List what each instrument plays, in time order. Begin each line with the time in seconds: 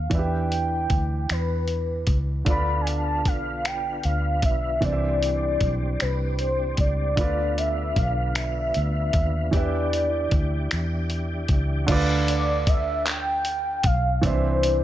Already playing: soft synth lead F5
0.10 fingered electric bass E2, grand piano E3 D4 F4 B4, soft synth lead G5, kick, closed hi-hat
0.15 grand piano E5
0.19 grand piano G4
0.52 closed hi-hat
0.90 fingered electric bass D2, kick, closed hi-hat
1.29 fingered electric bass E2, soft synth lead B4, finger snap, closed hi-hat
1.68 closed hi-hat
2.07 fingered electric bass C#2, kick, closed hi-hat
2.45 fingered electric bass D2, grand piano D3 D4 F4 B4, tonewheel organ D3 B3 F4, soft synth lead B5, kick, closed hi-hat
2.50 grand piano D5
2.81 soft synth lead G#5
2.87 soft synth lead A5, closed hi-hat
3.25 fingered electric bass B1, soft synth lead F5, kick, closed hi-hat
3.65 soft synth lead G5, finger snap, closed hi-hat
4.03 fingered electric bass D2, soft synth lead F5, closed hi-hat
4.42 fingered electric bass B1, soft synth lead E5, kick, closed hi-hat
4.81 fingered electric bass C2, grand piano E3 C4 D4, tonewheel organ G3 C4 D4, soft synth lead D5, kick, closed hi-hat
4.85 grand piano D5
4.92 grand piano E5
5.23 closed hi-hat
5.61 fingered electric bass B1, kick, closed hi-hat
6.00 fingered electric bass C2, soft synth lead B4, finger snap, closed hi-hat
6.39 soft synth lead C5, closed hi-hat
6.77 fingered electric bass C#2, soft synth lead D5, kick, closed hi-hat
7.16 fingered electric bass D2, grand piano D3 D4 F4 B4, tonewheel organ D3 B3 F4, kick, closed hi-hat
7.21 grand piano D5
7.58 soft synth lead E5, closed hi-hat
7.96 fingered electric bass B1, soft synth lead F5, kick, closed hi-hat
8.29 soft synth lead F5
8.35 soft synth lead E5, finger snap, closed hi-hat
8.74 fingered electric bass D2, closed hi-hat
9.13 fingered electric bass D#2, kick, closed hi-hat
9.51 fingered electric bass E2, grand piano E3 D4 G4 B4, tonewheel organ E3 D4 G4, soft synth lead D5, kick, closed hi-hat
9.56 grand piano E5
9.93 closed hi-hat
10.31 fingered electric bass D2, kick, closed hi-hat
10.71 fingered electric bass E2, finger snap, closed hi-hat
11.10 closed hi-hat
11.48 fingered electric bass C#2, kick, closed hi-hat
11.86 fingered electric bass D2, grand piano D3 D4 F4, kick, closed hi-hat, crash
11.91 grand piano B4 D5
12.28 soft synth lead D5, closed hi-hat
12.67 soft synth lead E5, kick, closed hi-hat
13.06 soft synth lead G5, clap, closed hi-hat
13.45 closed hi-hat
13.83 fingered electric bass B1, soft synth lead F5, kick, closed hi-hat
14.21 fingered electric bass C2, grand piano E3 C4 D4 C5, soft synth lead C5, kick, closed hi-hat
14.27 grand piano E5
14.63 closed hi-hat